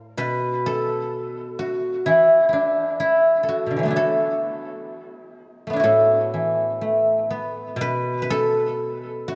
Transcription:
Already playing: A2 A4 B4
0.17 B2 B4
0.66 A4
1.59 F#4
2.06 E3 E4
2.49 E4
2.53 D4
3.00 E4
3.43 A4
3.49 F#4
3.66 B2
3.71 D3
3.76 E3 F#3
3.83 A3 B3
3.88 D4 E4
3.96 F#4 A4
5.67 A3 B3
5.73 D4 E4
5.80 A2 F#4
5.84 A4
6.34 E3
6.81 A3
7.30 B3
7.76 B2
7.81 B4
8.22 B4
8.30 A4
9.28 F#4

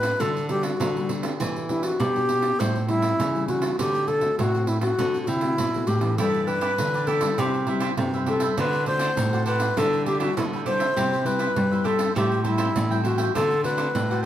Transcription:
Already playing: A2 A3 D4 F#4 B4
0.03 pandeiro
0.20 D3 G3 B3 F#4 A4, pandeiro
0.36 pandeiro
0.49 G3 B3 F#4 G4, pandeiro
0.63 F#4, pandeiro
0.80 D3, pandeiro
0.96 G3 B3 F#4, pandeiro
1.09 pandeiro
1.23 B3 D4 G4, pandeiro
1.40 E3, pandeiro
1.56 pandeiro
1.69 B3 D4 E4 G4, pandeiro
1.83 F#4, pandeiro
2.00 B2 G4, pandeiro
2.16 B3 D4 G4, pandeiro
2.29 pandeiro
2.42 pandeiro
2.60 A2 G3 C4 E4 C5, pandeiro
2.76 pandeiro
2.88 G3 C4 E4, pandeiro
3.02 pandeiro
3.19 C#3 E3, pandeiro
3.35 G3 C4 E4, pandeiro
3.48 F#4, pandeiro
3.62 pandeiro
3.79 D3 A3 C4 F#4 G4, pandeiro
3.95 pandeiro
4.08 A4, pandeiro
4.21 A3 C4 F#4, pandeiro
4.39 A2 F#4, pandeiro
4.54 A3 C4 F#4, pandeiro
4.67 E4, pandeiro
4.81 A3 C4 F#4, pandeiro
4.99 D3 A3 C4 F#4, pandeiro
5.14 pandeiro
5.23 F#4, pandeiro
5.28 C3 E4
5.41 A3 C4 F#4, pandeiro
5.58 A2 B2, pandeiro
5.74 A3 C4 F#4, pandeiro
5.87 A2 G4, pandeiro
6.01 E3 B3 D4, pandeiro
6.18 G2 E4 G4 A4 B4 D5, pandeiro
6.34 pandeiro
6.47 E4 G4 B4 D5, pandeiro
6.61 E4 G4 B4 D5, pandeiro
6.78 D3 E3 B3 D4, pandeiro
6.94 G4 B4 D5, pandeiro
7.07 E3 B3 D4 E4 G4 A4 B4 D5, pandeiro
7.21 G3 B3 E4 G4 B4 D5, pandeiro
7.38 C3 G4 B4 C5 E5, pandeiro
7.54 pandeiro
7.67 G3 B3 E4 G4 B4 C5 E5, pandeiro
7.80 G4 B4 C5 E5, pandeiro
7.97 G2 C3 G3 B3 E4, pandeiro
8.13 B4 C5 E5, pandeiro
8.26 G3 B3 E4 G4 A4 B4 C5 E5, pandeiro
8.40 B4 C5 E5, pandeiro
8.57 D3 A3 C4 D4 F#4 B4 C5 D5 F#5, pandeiro
8.73 pandeiro
8.86 A3 C4 D4 F#4 C5 D5 F#5, pandeiro
8.99 D4 C5 D5 F#5, pandeiro
9.17 A2, pandeiro
9.33 A3 C4 F#4 C5 D5 F#5, pandeiro
9.46 D4 B4 C5 D5 F#5, pandeiro
9.60 C5 D5 F#5, pandeiro
9.77 D3 G3 B3 D4 E4 G4 A4 B4 E5, pandeiro
9.93 pandeiro
10.06 D4 G4 B4 E5, pandeiro
10.19 G3 B3 D4 E4 F#4 G4 B4 E5, pandeiro
10.37 D3 E4, pandeiro
10.53 G4 B4 E5, pandeiro
10.65 G3 B3 D4 E4 G4 B4 C5 E5, pandeiro
10.80 G4 B4 E5, pandeiro
10.96 C3 G3 B3 E4 G4 B4 C5 E5, pandeiro
11.13 pandeiro
11.25 G3 B3 E4 G4 B4 C5 E5, pandeiro
11.39 G4 B4 C5 E5, pandeiro
11.56 G2 G3, pandeiro
11.71 G3 B3 E4 B4 C5 E5, pandeiro
11.84 G4 A4 B4 C5 E5, pandeiro
11.98 B4 C5 E5, pandeiro
12.15 A2 G3 C4 E4 G4 A4 C5 E5 G5, pandeiro
12.32 pandeiro
12.44 G3 C4 E4 A4 C5 E5 G5, pandeiro
12.57 A4 C5 E5 G5, pandeiro
12.75 A2 E3, pandeiro
12.91 G3 C4 E4 C5 E5 G5, pandeiro
13.03 F#4 A4 C5 E5 G5, pandeiro
13.18 C5 E5 G5, pandeiro
13.35 D3 A3 C4 D4 F#4 A4 C5 D5 F#5, pandeiro
13.51 pandeiro
13.63 A3 C4 D4 F#4 B4 C5 D5 F#5, pandeiro
13.77 D4 C5 D5 F#5, pandeiro
13.95 A2, pandeiro
14.10 A3 C4 F#4 C5 D5 F#5, pandeiro

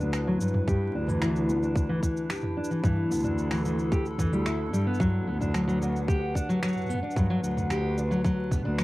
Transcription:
Already playing: D4 E4 B4
0.00 D2 D4, cabasa
0.13 finger snap, cabasa
0.27 F#3
0.41 G2 F#3, cabasa
0.48 cabasa
0.54 mid tom
0.68 G2 G4, kick, cabasa
0.95 D2 D4
1.08 E3, mid tom, cabasa
1.22 E3, finger snap, cabasa
1.36 cabasa
1.49 B3, cabasa
1.63 D4, cabasa
1.76 kick, cabasa
1.89 E3
2.03 E3, kick, cabasa
2.17 cabasa
2.30 G4, finger snap, cabasa
2.33 cabasa
2.35 cabasa
2.43 mid tom
2.57 D4
2.64 cabasa
2.71 E3, cabasa
2.83 G2 E3 A4, kick, cabasa
3.10 D2 B3, cabasa
3.14 cabasa
3.23 D4, mid tom, cabasa
3.25 cabasa
3.38 cabasa
3.51 E3, finger snap, cabasa
3.54 cabasa
3.57 cabasa
3.59 cabasa
3.61 cabasa
3.63 cabasa
3.65 E3, cabasa
3.79 cabasa
3.92 G4, kick, cabasa
4.06 cabasa
4.18 E3, kick, mid tom, cabasa
4.32 D2 G3, cabasa
4.46 E4, finger snap, cabasa
4.73 G2 G3, cabasa
4.87 B3
4.94 cabasa
5.00 G2 F#3 B4 F#5, kick, cabasa
5.26 D2 B3
5.41 D4, mid tom, cabasa
5.54 F#3, finger snap, cabasa
5.68 F#3, cabasa
5.81 F#3, cabasa
5.96 cabasa
6.08 G4, kick, cabasa
6.35 D4, kick, cabasa
6.49 F#3, cabasa
6.62 F#3, finger snap, cabasa
6.68 cabasa
6.73 mid tom, cabasa
6.77 cabasa
6.81 mid tom, cabasa
6.86 B3, cabasa
6.90 mid tom, cabasa
7.03 D4
7.11 cabasa
7.16 G2 F#3, kick, cabasa
7.30 F#3
7.43 D2 F#3, cabasa
7.57 mid tom, cabasa
7.70 G4, finger snap, cabasa
7.98 D4, cabasa
8.11 F#3, cabasa
8.24 F#3, kick, cabasa
8.51 B3, kick, mid tom, cabasa
8.54 mid tom
8.56 mid tom
8.58 mid tom
8.60 mid tom
8.62 D2 D4, mid tom
8.78 F#3, finger snap, cabasa

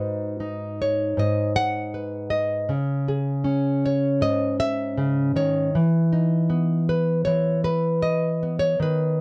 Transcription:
Already playing: G#2 D#4 F#4 B4 D#5
0.40 D#4
0.82 C#5
1.17 G#2 D#5
1.56 F#5
1.94 B4
2.30 D#5
2.69 C#3
3.08 G#4
3.44 C#4
3.86 C#5
4.21 G#2 D#5
4.60 E5
4.97 C#3
5.36 D#3 C#5
5.75 E3
6.13 D#4
6.50 B3
6.89 B4
7.25 E3 C#5
7.64 B4
8.02 D#5
8.43 B3
8.59 C#5
8.80 D#3 B4

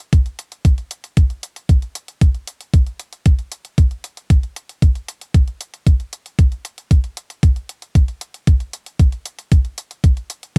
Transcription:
0.00 closed hi-hat
0.13 kick, closed hi-hat
0.26 closed hi-hat
0.39 closed hi-hat
0.52 closed hi-hat
0.65 kick, closed hi-hat
0.78 closed hi-hat
0.91 closed hi-hat
1.04 closed hi-hat
1.17 kick, closed hi-hat
1.30 closed hi-hat
1.43 closed hi-hat
1.56 closed hi-hat
1.69 kick, closed hi-hat
1.82 closed hi-hat
1.95 closed hi-hat
2.08 closed hi-hat
2.21 kick, closed hi-hat
2.35 closed hi-hat
2.47 closed hi-hat
2.61 closed hi-hat
2.74 kick, closed hi-hat
2.87 closed hi-hat
3.00 closed hi-hat
3.13 closed hi-hat
3.26 kick, closed hi-hat
3.39 closed hi-hat
3.52 closed hi-hat
3.65 closed hi-hat
3.78 kick, closed hi-hat
3.91 closed hi-hat
4.04 closed hi-hat
4.17 closed hi-hat
4.30 kick, closed hi-hat
4.43 closed hi-hat
4.56 closed hi-hat
4.69 closed hi-hat
4.82 kick, closed hi-hat
4.95 closed hi-hat
5.08 closed hi-hat
5.21 closed hi-hat
5.34 kick, closed hi-hat
5.48 closed hi-hat
5.61 closed hi-hat
5.74 closed hi-hat
5.87 kick, closed hi-hat
6.00 closed hi-hat
6.13 closed hi-hat
6.26 closed hi-hat
6.39 kick, closed hi-hat
6.52 closed hi-hat
6.65 closed hi-hat
6.78 closed hi-hat
6.91 kick, closed hi-hat
7.04 closed hi-hat
7.17 closed hi-hat
7.30 closed hi-hat
7.43 kick, closed hi-hat
7.56 closed hi-hat
7.69 closed hi-hat
7.82 closed hi-hat
7.95 kick, closed hi-hat
8.08 closed hi-hat
8.21 closed hi-hat
8.34 closed hi-hat
8.47 kick, closed hi-hat
8.60 closed hi-hat
8.73 closed hi-hat
8.86 closed hi-hat
8.99 kick, closed hi-hat
9.12 closed hi-hat
9.26 closed hi-hat
9.39 closed hi-hat
9.52 kick, closed hi-hat
9.65 closed hi-hat
9.78 closed hi-hat
9.91 closed hi-hat
10.04 kick, closed hi-hat
10.17 closed hi-hat
10.30 closed hi-hat
10.43 closed hi-hat

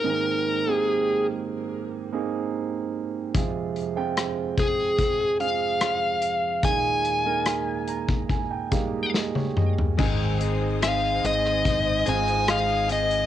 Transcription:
Already playing: A#4
0.04 G#2 D#3 A#3 C4 D#4 G#4
0.67 A#3 C4 D#4 G4
0.72 G#4
2.12 A#3 C4 D#4 G#4
3.34 F2 C3 G#3 C4 F4 G#4, kick, closed hi-hat
3.76 closed hi-hat
3.96 G#3 C4 F4 G5
4.17 cross-stick, closed hi-hat
4.58 G#4, kick, closed hi-hat
4.99 kick, closed hi-hat
5.39 G#3 C4 F4 G#4 F5, closed hi-hat
5.81 cross-stick, closed hi-hat
6.22 closed hi-hat
6.63 D#2 A#2 G#3 A#3 D#4 G#4 G#5, kick, closed hi-hat
7.05 closed hi-hat
7.25 G#3 A#3 D#4 A#4
7.46 cross-stick, closed hi-hat
7.87 A#5, closed hi-hat
8.08 kick, cross-stick
8.29 G#5, kick, closed hi-hat
8.51 G5
8.71 G3 G#3 A#3 D#4 F5, kick, closed hi-hat
9.14 D#5, snare
9.35 C#5, high tom
9.57 D#5, mid tom
9.78 floor tom
9.98 G#1 G#2 D#3 G#3 C4 D#4 G#4 C5 D#5 G#5 D#6, kick, crash
10.39 G#3 C4 D#4 G#4, closed hi-hat
10.81 G#3 C4 D#4 G#4 F5, cross-stick, closed hi-hat
11.24 G#1 D#5, closed hi-hat
11.46 cross-stick
11.65 kick, closed hi-hat
12.06 G#1 G#3 C4 D#4 F4 G#4 G#5, closed hi-hat
12.28 closed hi-hat
12.47 G#3 C4 D#4 G#4 F5, cross-stick, closed hi-hat
12.88 G#3 C4 D#4 G#4, closed hi-hat
12.92 D#5
13.11 closed hi-hat

